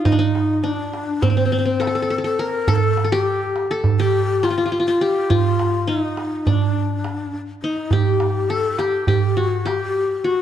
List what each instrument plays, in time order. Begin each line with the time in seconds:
Already playing: qanun F4
0.05 qanun D#4, ney D#4, darbuka dum
0.12 qanun D4
0.19 qanun D#4, ney D#4
0.35 darbuka tek
0.63 ney D4, qanun D4, darbuka ka
0.94 darbuka tek
1.22 qanun C4, ney C5, darbuka dum
1.30 qanun C4
1.37 qanun C4
1.45 qanun C4
1.52 qanun C4
1.59 qanun C4
1.65 qanun C4
1.80 qanun A4, ney A4, darbuka tek
1.87 qanun A4
1.95 qanun A4
2.02 qanun A4
2.10 qanun A4, darbuka ka
2.18 qanun A4
2.24 qanun A4, ney A4
2.39 qanun A#4, ney A#4
2.68 qanun A4, ney A4, darbuka dum
2.75 ney A#4
2.83 ney A4
2.97 darbuka tek
3.04 qanun A4
3.12 qanun G4, ney G4
3.26 darbuka ka
3.56 darbuka tek
3.71 qanun A4
3.84 darbuka dum
4.00 qanun G4, ney G4
4.43 qanun F4, ney F4, darbuka tek
4.50 qanun F4
4.58 qanun F4
4.66 qanun F4
4.72 qanun F4
4.80 qanun F4
4.87 ney F4, qanun F4
5.01 qanun G4, ney G4
5.30 qanun F4, ney F4, darbuka dum
5.59 darbuka tek
5.87 qanun D#4, ney D#4, darbuka ka
6.17 darbuka tek
6.46 ney D4, qanun D4, darbuka dum
6.76 darbuka ka
7.04 darbuka tek
7.33 darbuka ka
7.62 ney D#4, qanun D#4, darbuka ka
7.77 darbuka ka
7.91 ney G4, qanun G4, darbuka dum
8.20 darbuka tek
8.50 ney A4, qanun A4
8.78 qanun G4, ney G4, darbuka tek
9.07 qanun G4, ney G4, darbuka dum
9.37 qanun F#4, ney F#4, darbuka ka
9.65 qanun G4, ney G4, darbuka tek
10.24 qanun F#4, ney F#4, darbuka ka